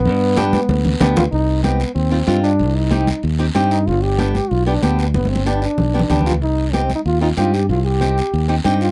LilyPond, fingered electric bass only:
\new Staff \with { instrumentName = "Fingered electric bass" } { \clef bass \time 4/4 \key g \phrygian \tempo 4 = 188 g,2 d,4 d,4 | \key c \minor c,2 ees,4 g,4 | c,2 ees,4 g,4 | g,,2 b,,4 d,4 |
g,,2 b,,4 d,4 | c,2 ees,4 g,4 | c,2 ees,4 g,4 | }